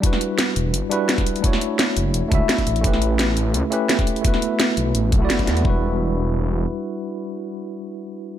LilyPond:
<<
  \new Staff \with { instrumentName = "Tine electric piano" } { \time 4/4 \key e \dorian \tempo 4 = 171 <g d' e' fis' b'>2~ <g d' e' fis' b'>8 <g d' e' fis' b'>16 r4 r16 | <a d' e' fis' cis''>2~ <a d' e' fis' cis''>8 <a d' e' fis' e''>4. | <a cis' e' g' b'>2~ <a cis' e' g' b'>8 <a cis' e' g' b'>16 r4 r16 | <a b e' fis' b'>2~ <a b e' fis' b'>8 r16 <a b e' fis' d''>4~ <a b e' fis' d''>16 |
<g d' e' fis' b'>1~ | <g d' e' fis' b'>1 | }
  \new Staff \with { instrumentName = "Detuned saw bass" } { \clef bass \time 4/4 \key e \dorian r4. e,,8 g,,8 r4. | r4. fis,,8 e,,8 cis,8 r8 a,,8~ | a,,4. a,,8 cis,8 r4. | r4. b,,8 a,,8 b,,8 fis,,8 e,8 |
e,,2. r4 | r1 | }
  \new DrumStaff \with { instrumentName = "Drums" } \drummode { \time 4/4 <hh bd>16 sn16 hh8 <hh sn>8 hh8 hh8 hh8 <hh sn>16 <hh bd sn>16 hh16 hh16 | <hh bd>16 sn16 hh8 <hh sn>8 hh8 hh8 <hh bd>8 <hh sn>16 <hh bd>16 hh16 hh16 | <hh bd>16 sn16 hh8 <hh sn>8 hh8 hh8 hh8 <hh sn>16 <hh bd sn>16 hh16 hh16 | <hh bd>16 sn16 hh8 <hh sn>8 hh8 hh8 <hh bd>8 <hh sn>16 <hh bd>16 <hh sn>16 hh16 |
bd4 r4 r4 r4 | r4 r4 r4 r4 | }
>>